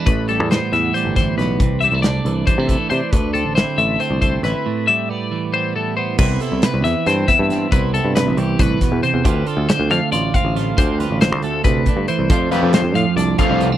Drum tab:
CC |-------|-------|-------|-------|
HH |xxxxxxx|xxxxxxx|xxxxxxx|-------|
SD |--oo-oo|--o----|--o---o|-------|
BD |o----o-|o---oo-|o----o-|-------|

CC |x------|-------|-------|-------|
HH |-xxxxxx|xxxxxxx|xxxxxxx|xxxxxxx|
SD |--ooooo|--o--o-|--oo--o|-oo----|
BD |o----o-|o---oo-|o----o-|o---oo-|

CC |-------|
HH |xxxxxxx|
SD |-oo----|
BD |o----o-|